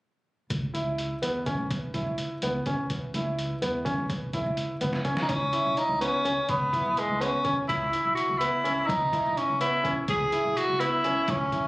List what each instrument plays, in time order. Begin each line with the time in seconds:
0.50 upright bass C#2, kick, closed hi-hat
0.74 upright bass C#2, grand piano E4, closed hi-hat
0.98 closed hi-hat
1.22 upright bass E2, grand piano B3, closed hi-hat
1.46 upright bass C#3, grand piano C#4, kick, closed hi-hat
1.58 upright bass B1
1.71 kick, closed hi-hat
1.94 upright bass B1, grand piano E4, kick, closed hi-hat
2.06 upright bass C#2
2.18 closed hi-hat
2.42 upright bass C#2, grand piano B3, closed hi-hat
2.66 grand piano C#4, kick, closed hi-hat
2.90 kick, closed hi-hat
3.14 upright bass C#2, grand piano E4, closed hi-hat
3.39 closed hi-hat
3.62 upright bass E2, grand piano B3, closed hi-hat
3.85 upright bass C#3, grand piano C#4, kick, closed hi-hat
3.98 upright bass B1
4.10 kick, closed hi-hat
4.33 upright bass B1, grand piano E4, kick, closed hi-hat
4.46 upright bass C#2
4.57 closed hi-hat
4.81 upright bass C#2, grand piano B3, closed hi-hat, high tom
4.93 snare
5.05 grand piano C#4, closed hi-hat, mid tom
5.17 snare
5.22 tenor saxophone D#4
5.29 upright bass C#2, tenor saxophone C#4, kick, closed hi-hat
5.53 grand piano E4, closed hi-hat
5.65 upright bass B1
5.77 tenor saxophone D#4, closed hi-hat
5.89 upright bass C#2
6.01 grand piano B3, tenor saxophone C#4, closed hi-hat
6.25 upright bass C#2, grand piano C#4, closed hi-hat
6.49 upright bass C#2, tenor saxophone B3, kick, closed hi-hat
6.73 grand piano E4, kick, closed hi-hat
6.85 upright bass B1
6.97 tenor saxophone G#3, closed hi-hat
7.09 upright bass C#2
7.21 grand piano B3, tenor saxophone C#4, closed hi-hat
7.45 upright bass C#2, grand piano C#4, kick, closed hi-hat
7.68 upright bass C#2, tenor saxophone E4, kick, closed hi-hat
7.92 grand piano E4, closed hi-hat
8.05 upright bass B1
8.15 tenor saxophone F#4, closed hi-hat
8.29 upright bass C#2
8.38 grand piano B3, tenor saxophone E4, closed hi-hat
8.64 upright bass C#2, grand piano C#4, closed hi-hat
8.87 upright bass C#2, tenor saxophone D#4, kick, closed hi-hat
9.12 grand piano E4, kick, closed hi-hat
9.26 upright bass B1
9.37 tenor saxophone C#4, closed hi-hat
9.49 upright bass C#2
9.61 grand piano B3, tenor saxophone E4, closed hi-hat
9.84 upright bass C#2, grand piano C#4, kick, closed hi-hat
10.08 upright bass C#2, tenor saxophone G#4, kick, closed hi-hat
10.32 grand piano E4, closed hi-hat
10.45 upright bass B1
10.57 tenor saxophone F#4, closed hi-hat
10.69 upright bass C#2
10.80 grand piano B3, tenor saxophone E4, closed hi-hat
11.04 upright bass C#2, grand piano C#4, closed hi-hat
11.28 upright bass C#2, tenor saxophone C#4, kick, closed hi-hat
11.52 grand piano E4, kick, closed hi-hat